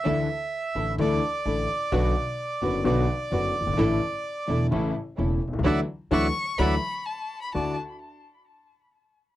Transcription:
X:1
M:4/4
L:1/16
Q:1/4=128
K:D
V:1 name="Violin"
z16 | z16 | z16 | z4 c'4 b4 a3 b |
a2 z12 z2 |]
V:2 name="Bandoneon"
e8 d8- | d8 d8- | d8 z8 | [def]2 z2 [def]2 z2 [def]2 z6 |
d2 z12 z2 |]
V:3 name="String section"
[DEA]2 z4 [DEA]2 [DEA]2 z2 [DEA]2 z2 | [DFB]2 z4 [DFB]2 [DFB]2 z2 [DFB]2 z2 | [DEA]2 z4 [DEA]2 [CEA]2 z2 [CEA]2 z2 | [DEF]2 z2 [DEF]2 z2 [DEF]2 z6 |
[DEF]2 z12 z2 |]
V:4 name="Grand piano" clef=bass
[D,,D,E,A,E]2 z4 [A,,,A,,D,E,A,E]2 [D,,D,E,A,E]2 z2 [A,,,A,,D,E,A,E]2 z2 | [B,,,B,,D,F,B,F]2 z4 [F,,,F,,D,F,B,F]2 [B,,,B,,D,F,B,F]2 z2 [F,,,F,,D,F,B,F]2 z/2 F,,,/2 G,,,/2 ^G,,,/2 | [A,,,A,,D,E,A,E]2 z4 [E,,,E,,D,E,A,E]2 [A,,,A,,C,E,A,E]2 z2 [E,,,E,,C,E,A,E]2 z/2 B,,,/2 =C,,/2 ^C,,/2 | [D,E,F,]2 z2 [D,E,F,]2 z2 [D,E,F,]2 z6 |
[D,,DEF]2 z12 z2 |]
V:5 name="Upright bass" clef=bass
D,,3/2 z4 z/2 A,,,3/2 z/2 D,,3/2 z2 z/2 A,,,3/2 z2 z/2 | B,,,3/2 z4 z/2 F,,,3/2 z/2 B,,,3/2 z2 z/2 F,,,3/2 z F,,,/2 G,,,/2 ^G,,,/2 | A,,,3/2 z4 z/2 E,,,3/2 z/2 A,,,3/2 z2 z/2 E,,,3/2 z B,,,/2 =C,,/2 ^C,,/2 | D,,3/2 z2 z/2 D,,3/2 z2 z/2 D,,3/2 z6 z/2 |
D,,2 z12 z2 |]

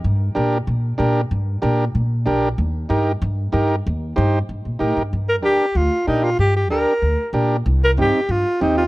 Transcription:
X:1
M:4/4
L:1/8
Q:1/4=189
K:Gm
V:1 name="Alto saxophone"
z8 | z8 | z8 | z8 |
z B G2 F2 E F | G G B4 z2 | z B G2 F2 E F |]
V:2 name="Transistor combo organ"
z2 [DGB] z3 [DGB] z | z2 [DGB] z3 [DGB] z | z2 [EGB] z3 [EGB] z | z2 [EGc] z3 [EGB] z |
z2 [DGB] z3 [DGB] z | z2 [DGB] z3 [DGB] z | z2 [CEG] z3 [CEG] z |]
V:3 name="Upright bass" clef=bass
G,,2 B,,2 B,,2 B,,2 | G,,2 B,,2 B,,2 B,,,2 | E,,2 G,,2 G,,2 G,,2 | E,,2 G,,2 G,, B,, A,, G,, |
G,,2 D,, z D,, z B,,2 | G,,2 D,, z D,, z B,,2 | C,,2 G,, z G,, z E,,2 |]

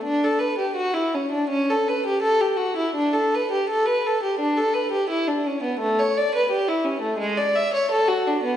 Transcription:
X:1
M:4/4
L:1/16
Q:1/4=84
K:D
V:1 name="Violin"
D A B G F E C D C A B G A G F E | D A B G A B A G D A B G E D C B, | A, c d B G E C A, ^G, d e c A F D B, |]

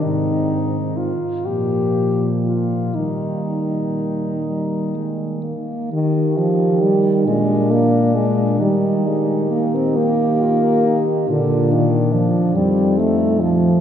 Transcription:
X:1
M:6/8
L:1/16
Q:3/8=44
K:Eb
V:1 name="French horn"
E4 F2 G4 F2 | E8- E2 z2 | z6 D6 | E6 G2 F2 E2 |
D6 C4 z2 |]
V:2 name="French horn"
C4 z2 B,6 | B,8- B,2 z2 | G6 D6 | G12 |
F4 z2 E6 |]
V:3 name="French horn" clef=bass
E,4 z2 F,6 | G,6 G,2 A,2 B,2 | E,2 F,2 G,2 A,2 B,2 A,2 | G,2 A,2 B, C B,6 |
D,2 E,2 F,2 G,2 =A,2 F,2 |]
V:4 name="French horn" clef=bass
A,,4 z2 B,,6 | E,8- E,2 z2 | E,6 B,,6 | E,12 |
B,,4 z2 F,,6 |]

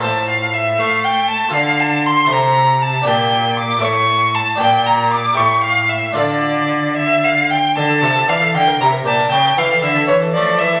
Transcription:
X:1
M:6/8
L:1/16
Q:3/8=78
K:F
V:1 name="Violin"
a2 f2 e2 f2 g2 a2 | [K:Dm] f2 a2 c'2 b4 a2 | g4 d'2 ^c'4 a2 | g2 b2 d'2 ^c'2 f2 e2 |
d6 e2 f2 g2 | a4 f2 g2 b2 a2 | g2 f2 e2 ^c2 d2 e2 |]
V:2 name="Harpsichord"
[FAc]12 | [K:Dm] [FA]6 [EAc]6 | [DGd]6 [EA^c]6 | [DGd]6 [EGA]6 |
[DFA]12 | z A F A d A z B E B G B | z A E A E A E A A, A E A |]
V:3 name="Harpsichord" clef=bass
A,,6 A,6 | [K:Dm] D,6 C,6 | B,,6 A,,6 | B,,6 A,,6 |
D,8- D,2 z2 | D,2 C,2 E,2 D,2 C,2 B,,2 | ^C,2 E,2 D,2 E,2 F,2 E,2 |]
V:4 name="Cello" clef=bass
A,,6 A,6 | [K:Dm] D,6 C,6 | B,,6 A,,6 | B,,6 A,,6 |
D,8- D,2 z2 | D,2 C,2 E,2 D,2 C,2 B,,2 | ^C,2 E,2 D,2 E,2 F,2 E,2 |]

